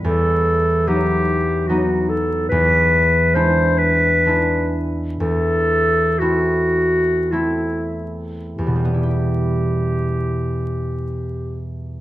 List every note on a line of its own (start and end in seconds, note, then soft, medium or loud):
0.00 0.86 B3 soft
0.04 2.50 E2 soft
0.04 0.89 A4 medium
0.87 1.68 F#3 soft
0.87 1.69 B3 soft
0.87 1.69 D#4 soft
0.87 1.69 G4 medium
1.68 2.54 F#3 soft
1.68 5.24 B3 soft
1.68 2.54 D#4 soft
1.68 2.11 F#4 medium
2.09 2.48 A4 medium
2.49 5.19 E2 soft
2.49 3.36 B4 medium
3.35 4.24 G#3 soft
3.35 4.26 D4 soft
3.35 4.26 E4 soft
3.35 3.80 C5 medium
3.78 4.87 B4 medium
4.25 5.23 G#3 soft
4.25 5.24 D4 soft
4.25 6.20 E4 soft
5.20 8.57 E2 soft
5.20 6.20 A4 medium
6.19 7.31 A3 soft
6.19 7.31 C4 soft
6.19 7.32 E4 soft
6.19 7.33 F#4 medium
7.32 8.63 A3 soft
7.32 8.63 C4 soft
7.32 7.95 E4 soft
7.32 8.93 E4 soft
8.57 12.01 E2 soft
8.57 11.63 G4 soft
8.67 12.01 B2 soft
8.76 12.01 G3 soft
8.85 11.95 B3 soft
8.94 12.00 E4 soft
9.03 12.01 G4 soft